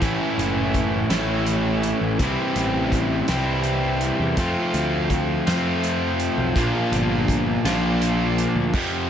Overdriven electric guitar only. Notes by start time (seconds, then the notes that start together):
0.01 A2 E3 A3 C#4 E4
1.10 A2 E3 A3 C#4 E4
2.20 C3 E3 G3 C4 E4
3.29 C3 E3 G3 C4 E4
4.38 F3 A3 C4 F4
5.47 F3 A3 C4 F4
6.56 A#2 F3 A#3 D4 F4
7.65 A#2 F3 A#3 D4 F4
8.74 F2 C3 F3